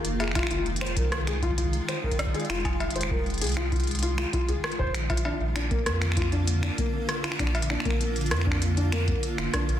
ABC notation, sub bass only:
X:1
M:4/4
L:1/16
Q:1/4=98
K:Fdor
V:1 name="Sub bass" clef=bass
F,,,3 F,,,3 C,,6 z4 | F,,,3 F,,,3 C,,6 z C,, z F,,, | B,,,3 B,,,3 F,,6 z4 | B,,,3 B,,,3 F,,6 z F,,, z B,,, |]